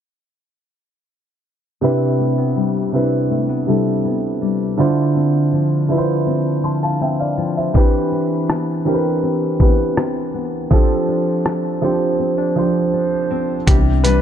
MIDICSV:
0, 0, Header, 1, 5, 480
1, 0, Start_track
1, 0, Key_signature, 0, "major"
1, 0, Tempo, 740741
1, 1181, Time_signature, 4, 2, 24, 8
1, 9213, End_track
2, 0, Start_track
2, 0, Title_t, "Grand piano"
2, 0, Program_c, 0, 0
2, 1175, Note_on_c, 0, 48, 96
2, 1179, Note_on_c, 0, 60, 87
2, 1183, Note_on_c, 0, 62, 83
2, 1188, Note_on_c, 0, 64, 83
2, 1192, Note_on_c, 0, 71, 100
2, 1310, Control_c, 0, 64, 127
2, 1826, Note_off_c, 0, 48, 0
2, 1828, Note_off_c, 0, 60, 0
2, 1830, Note_off_c, 0, 62, 0
2, 1832, Note_off_c, 0, 64, 0
2, 1834, Note_off_c, 0, 71, 0
2, 1895, Note_on_c, 0, 48, 80
2, 1899, Note_on_c, 0, 60, 73
2, 1904, Note_on_c, 0, 62, 75
2, 1908, Note_on_c, 0, 64, 72
2, 1912, Note_on_c, 0, 71, 83
2, 2330, Note_off_c, 0, 48, 0
2, 2332, Note_off_c, 0, 60, 0
2, 2334, Note_off_c, 0, 62, 0
2, 2336, Note_off_c, 0, 64, 0
2, 2338, Note_off_c, 0, 71, 0
2, 2375, Note_on_c, 0, 48, 70
2, 2379, Note_on_c, 0, 60, 64
2, 2383, Note_on_c, 0, 62, 63
2, 2388, Note_on_c, 0, 64, 64
2, 2392, Note_on_c, 0, 69, 78
2, 3026, Note_off_c, 0, 48, 0
2, 3028, Note_off_c, 0, 60, 0
2, 3030, Note_off_c, 0, 62, 0
2, 3032, Note_off_c, 0, 64, 0
2, 3034, Note_off_c, 0, 69, 0
2, 3094, Note_on_c, 0, 50, 97
2, 3099, Note_on_c, 0, 62, 92
2, 3104, Note_on_c, 0, 64, 86
2, 3108, Note_on_c, 0, 65, 87
2, 3109, Control_c, 0, 64, 0
2, 3112, Note_on_c, 0, 72, 102
2, 3239, Control_c, 0, 64, 127
2, 3746, Note_off_c, 0, 50, 0
2, 3748, Note_off_c, 0, 62, 0
2, 3750, Note_off_c, 0, 64, 0
2, 3752, Note_off_c, 0, 65, 0
2, 3755, Note_off_c, 0, 72, 0
2, 3815, Note_on_c, 0, 50, 78
2, 3819, Note_on_c, 0, 62, 73
2, 3824, Note_on_c, 0, 64, 77
2, 3829, Note_on_c, 0, 65, 74
2, 3833, Note_on_c, 0, 71, 70
2, 3869, Note_off_c, 0, 71, 0
2, 3875, Note_on_c, 0, 72, 89
2, 4250, Note_off_c, 0, 50, 0
2, 4252, Note_off_c, 0, 62, 0
2, 4254, Note_off_c, 0, 64, 0
2, 4257, Note_off_c, 0, 65, 0
2, 4280, Note_off_c, 0, 72, 0
2, 4303, Note_on_c, 0, 84, 55
2, 4306, Note_on_c, 0, 81, 48
2, 4415, Note_off_c, 0, 81, 0
2, 4416, Note_off_c, 0, 84, 0
2, 4425, Note_on_c, 0, 81, 69
2, 4428, Note_on_c, 0, 77, 55
2, 4537, Note_off_c, 0, 81, 0
2, 4539, Note_off_c, 0, 77, 0
2, 4544, Note_on_c, 0, 79, 63
2, 4548, Note_on_c, 0, 76, 54
2, 4657, Note_off_c, 0, 79, 0
2, 4659, Note_off_c, 0, 76, 0
2, 4664, Note_on_c, 0, 77, 68
2, 4668, Note_on_c, 0, 74, 56
2, 4890, Note_off_c, 0, 77, 0
2, 4893, Note_off_c, 0, 74, 0
2, 4906, Note_on_c, 0, 76, 59
2, 4910, Note_on_c, 0, 72, 52
2, 5015, Note_on_c, 0, 52, 96
2, 5019, Note_on_c, 0, 60, 87
2, 5024, Note_on_c, 0, 62, 91
2, 5028, Note_on_c, 0, 67, 88
2, 5030, Control_c, 0, 64, 0
2, 5033, Note_on_c, 0, 71, 110
2, 5123, Control_c, 0, 64, 127
2, 5131, Note_off_c, 0, 76, 0
2, 5133, Note_off_c, 0, 72, 0
2, 5666, Note_off_c, 0, 52, 0
2, 5668, Note_off_c, 0, 60, 0
2, 5670, Note_off_c, 0, 62, 0
2, 5672, Note_off_c, 0, 67, 0
2, 5675, Note_off_c, 0, 71, 0
2, 5736, Note_on_c, 0, 52, 80
2, 5740, Note_on_c, 0, 60, 78
2, 5745, Note_on_c, 0, 62, 76
2, 5749, Note_on_c, 0, 67, 75
2, 5753, Note_on_c, 0, 70, 72
2, 5789, Note_off_c, 0, 70, 0
2, 5795, Note_on_c, 0, 71, 88
2, 6170, Note_off_c, 0, 52, 0
2, 6172, Note_off_c, 0, 60, 0
2, 6175, Note_off_c, 0, 62, 0
2, 6177, Note_off_c, 0, 67, 0
2, 6200, Note_off_c, 0, 71, 0
2, 6217, Note_on_c, 0, 52, 71
2, 6221, Note_on_c, 0, 60, 63
2, 6225, Note_on_c, 0, 62, 65
2, 6230, Note_on_c, 0, 67, 65
2, 6234, Note_on_c, 0, 71, 77
2, 6867, Note_off_c, 0, 52, 0
2, 6869, Note_off_c, 0, 60, 0
2, 6871, Note_off_c, 0, 62, 0
2, 6873, Note_off_c, 0, 67, 0
2, 6875, Note_off_c, 0, 71, 0
2, 6937, Note_on_c, 0, 53, 98
2, 6941, Note_on_c, 0, 60, 90
2, 6946, Note_on_c, 0, 62, 85
2, 6950, Control_c, 0, 64, 0
2, 6950, Note_on_c, 0, 67, 84
2, 6954, Note_on_c, 0, 69, 109
2, 7048, Control_c, 0, 64, 127
2, 7587, Note_off_c, 0, 53, 0
2, 7589, Note_off_c, 0, 60, 0
2, 7591, Note_off_c, 0, 62, 0
2, 7593, Note_off_c, 0, 67, 0
2, 7595, Note_off_c, 0, 69, 0
2, 7657, Note_on_c, 0, 53, 78
2, 7661, Note_on_c, 0, 60, 74
2, 7665, Note_on_c, 0, 62, 75
2, 7669, Note_on_c, 0, 67, 76
2, 7674, Note_on_c, 0, 72, 89
2, 8091, Note_off_c, 0, 53, 0
2, 8093, Note_off_c, 0, 60, 0
2, 8095, Note_off_c, 0, 62, 0
2, 8097, Note_off_c, 0, 67, 0
2, 8099, Note_off_c, 0, 72, 0
2, 8137, Note_on_c, 0, 53, 78
2, 8142, Note_on_c, 0, 60, 70
2, 8146, Note_on_c, 0, 62, 71
2, 8150, Note_on_c, 0, 67, 67
2, 8154, Note_on_c, 0, 72, 85
2, 8787, Note_off_c, 0, 53, 0
2, 8789, Note_off_c, 0, 60, 0
2, 8791, Note_off_c, 0, 62, 0
2, 8793, Note_off_c, 0, 67, 0
2, 8795, Note_off_c, 0, 72, 0
2, 8855, Note_on_c, 0, 67, 87
2, 8861, Note_on_c, 0, 52, 50
2, 8865, Note_on_c, 0, 59, 64
2, 8869, Control_c, 0, 64, 0
2, 8869, Note_on_c, 0, 62, 57
2, 8910, Note_off_c, 0, 67, 0
2, 8924, Note_off_c, 0, 59, 0
2, 8985, Control_c, 0, 64, 127
2, 9095, Note_on_c, 0, 71, 101
2, 9101, Note_off_c, 0, 62, 0
2, 9110, Note_on_c, 0, 62, 78
2, 9213, Note_off_c, 0, 52, 0
2, 9213, Note_off_c, 0, 62, 0
2, 9213, Note_off_c, 0, 71, 0
2, 9213, End_track
3, 0, Start_track
3, 0, Title_t, "Nylon-string guitar"
3, 0, Program_c, 1, 24
3, 1181, Note_on_c, 1, 48, 74
3, 1421, Note_on_c, 1, 57, 51
3, 1540, Note_off_c, 1, 57, 0
3, 1540, Note_on_c, 1, 59, 46
3, 1661, Note_on_c, 1, 55, 55
3, 1900, Note_on_c, 1, 64, 55
3, 2139, Note_off_c, 1, 59, 0
3, 2141, Note_on_c, 1, 57, 57
3, 2261, Note_off_c, 1, 57, 0
3, 2261, Note_on_c, 1, 59, 49
3, 2373, Note_off_c, 1, 55, 0
3, 2381, Note_on_c, 1, 55, 53
3, 2613, Note_off_c, 1, 59, 0
3, 2621, Note_on_c, 1, 59, 58
3, 2853, Note_off_c, 1, 55, 0
3, 2860, Note_on_c, 1, 55, 58
3, 3098, Note_off_c, 1, 48, 0
3, 3101, Note_on_c, 1, 50, 80
3, 3149, Note_off_c, 1, 55, 0
3, 3149, Note_off_c, 1, 59, 0
3, 3341, Note_on_c, 1, 60, 52
3, 3580, Note_on_c, 1, 53, 55
3, 3600, Note_off_c, 1, 64, 0
3, 3819, Note_on_c, 1, 64, 60
3, 4058, Note_off_c, 1, 60, 0
3, 4060, Note_on_c, 1, 60, 56
3, 4291, Note_off_c, 1, 53, 0
3, 4299, Note_on_c, 1, 53, 60
3, 4537, Note_off_c, 1, 60, 0
3, 4540, Note_on_c, 1, 60, 56
3, 4771, Note_off_c, 1, 53, 0
3, 4779, Note_on_c, 1, 53, 60
3, 5018, Note_off_c, 1, 53, 0
3, 5021, Note_off_c, 1, 50, 0
3, 5021, Note_on_c, 1, 52, 78
3, 5257, Note_off_c, 1, 64, 0
3, 5260, Note_off_c, 1, 60, 0
3, 5260, Note_on_c, 1, 60, 56
3, 5500, Note_on_c, 1, 59, 56
3, 5741, Note_on_c, 1, 67, 64
3, 5977, Note_off_c, 1, 60, 0
3, 5980, Note_on_c, 1, 60, 58
3, 6213, Note_off_c, 1, 59, 0
3, 6221, Note_on_c, 1, 59, 57
3, 6458, Note_off_c, 1, 60, 0
3, 6461, Note_on_c, 1, 60, 61
3, 6693, Note_off_c, 1, 59, 0
3, 6701, Note_on_c, 1, 59, 59
3, 6939, Note_off_c, 1, 52, 0
3, 6941, Note_on_c, 1, 53, 83
3, 6989, Note_off_c, 1, 59, 0
3, 6989, Note_off_c, 1, 67, 0
3, 7179, Note_off_c, 1, 60, 0
3, 7181, Note_on_c, 1, 62, 57
3, 7420, Note_on_c, 1, 60, 58
3, 7660, Note_on_c, 1, 69, 63
3, 7899, Note_off_c, 1, 62, 0
3, 7901, Note_off_c, 1, 60, 0
3, 7901, Note_on_c, 1, 60, 60
3, 8020, Note_off_c, 1, 60, 0
3, 8020, Note_on_c, 1, 62, 54
3, 8141, Note_on_c, 1, 60, 59
3, 8373, Note_off_c, 1, 62, 0
3, 8381, Note_on_c, 1, 62, 59
3, 8620, Note_off_c, 1, 60, 0
3, 8623, Note_on_c, 1, 60, 58
3, 8861, Note_off_c, 1, 53, 0
3, 8861, Note_on_c, 1, 48, 82
3, 8908, Note_off_c, 1, 69, 0
3, 8909, Note_off_c, 1, 62, 0
3, 9100, Note_on_c, 1, 55, 55
3, 9213, Note_off_c, 1, 48, 0
3, 9213, Note_off_c, 1, 55, 0
3, 9213, Note_off_c, 1, 60, 0
3, 9213, End_track
4, 0, Start_track
4, 0, Title_t, "808-style bass"
4, 0, Program_c, 2, 38
4, 8862, Note_on_c, 2, 36, 114
4, 9213, Note_off_c, 2, 36, 0
4, 9213, End_track
5, 0, Start_track
5, 0, Title_t, "Drums"
5, 5021, Note_on_c, 9, 36, 112
5, 5086, Note_off_c, 9, 36, 0
5, 5505, Note_on_c, 9, 37, 104
5, 5570, Note_off_c, 9, 37, 0
5, 6221, Note_on_c, 9, 36, 85
5, 6286, Note_off_c, 9, 36, 0
5, 6463, Note_on_c, 9, 37, 112
5, 6528, Note_off_c, 9, 37, 0
5, 6940, Note_on_c, 9, 36, 112
5, 7005, Note_off_c, 9, 36, 0
5, 7424, Note_on_c, 9, 37, 100
5, 7489, Note_off_c, 9, 37, 0
5, 8861, Note_on_c, 9, 36, 114
5, 8861, Note_on_c, 9, 42, 61
5, 8926, Note_off_c, 9, 36, 0
5, 8926, Note_off_c, 9, 42, 0
5, 9101, Note_on_c, 9, 42, 62
5, 9166, Note_off_c, 9, 42, 0
5, 9213, End_track
0, 0, End_of_file